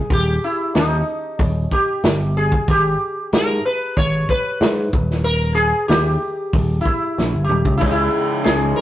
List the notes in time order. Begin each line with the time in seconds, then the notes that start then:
0.10 D#1 G4, kick, open hi-hat
0.44 E4
0.75 D#2 D#4, snare, open hi-hat
1.39 D#1, kick, open hi-hat
1.45 C#4
1.71 G4, kick
2.04 G1, snare, open hi-hat
2.37 G#4
2.52 kick
2.68 G#1 G4, kick, open hi-hat
3.32 G#2 A#4, snare, open hi-hat
3.66 B4
3.97 G#1 C#5, kick, open hi-hat
4.29 B4, kick
4.61 G#2, snare, open hi-hat
4.93 D#1, kick
5.10 snare
5.24 A#4, open hi-hat
5.55 G#4
5.88 D#2 G4, snare, open hi-hat
6.53 D#1, kick, open hi-hat
6.81 E4
6.85 kick
7.18 A#1, snare
7.35 G1
7.44 G4
7.49 D#1, mid tom
7.65 C#2, kick
7.77 C#3 E4, kick, open hi-hat
7.81 C#2 G#3 C#4 D#4 G#4
7.87 D#4 E4
8.44 C#2 G#4, snare, open hi-hat
8.76 A#4